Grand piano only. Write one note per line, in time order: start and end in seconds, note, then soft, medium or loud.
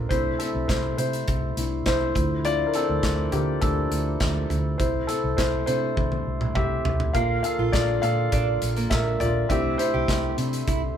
0.00 0.12 C4 medium
0.00 0.10 D4 medium
0.00 0.12 A4 medium
0.00 0.12 A#4 loud
0.09 0.94 A3 soft
0.09 0.94 D4 soft
0.09 0.38 E4 medium
0.09 0.40 C5 medium
0.39 0.68 C4 medium
0.39 0.69 A4 medium
0.68 0.97 E4 medium
0.68 0.96 C5 medium
0.98 1.54 E4 medium
0.98 1.53 C5 medium
1.57 1.84 A3 soft
1.57 1.84 D4 soft
1.57 1.84 E4 soft
1.86 2.41 E4 medium
1.86 2.41 C5 medium
2.45 3.29 F3 soft
2.45 3.29 D4 soft
2.45 3.30 E4 medium
2.45 2.66 F4 medium
2.45 2.68 D5 loud
2.66 2.74 A#4 medium
2.75 3.30 C4 medium
2.75 3.35 A4 medium
3.32 3.61 A#3 medium
3.32 3.60 G4 medium
3.61 4.76 D4 medium
3.61 4.83 A4 medium
4.78 5.07 E4 medium
4.78 5.09 C5 medium
5.07 5.37 C4 medium
5.07 5.35 A4 medium
5.37 5.45 E4 medium
5.37 5.44 C5 medium
5.66 6.07 A3 soft
5.66 6.07 D4 soft
5.66 6.23 E4 medium
5.66 6.22 C5 medium
6.55 7.11 G4 medium
6.55 7.16 E5 medium
7.13 7.98 A#3 soft
7.13 7.99 D4 soft
7.13 7.73 F4 medium
7.13 7.42 A#4 medium
7.13 7.41 F5 medium
7.43 7.72 A4 medium
7.43 7.74 F5 medium
7.72 8.01 F4 medium
7.72 8.03 D5 medium
8.02 8.87 A4 medium
8.02 8.86 F5 loud
8.90 8.99 A#4 medium
8.90 8.97 E5 medium
9.20 9.49 F4 medium
9.20 9.51 D5 medium
9.49 9.89 A3 soft
9.49 9.89 D4 soft
9.49 9.79 E4 medium
9.49 9.78 G4 medium
9.49 9.80 E5 medium
9.78 10.36 E4 medium
9.78 10.97 C5 medium
10.37 10.64 A3 soft
10.37 10.64 D4 soft
10.37 10.64 E4 soft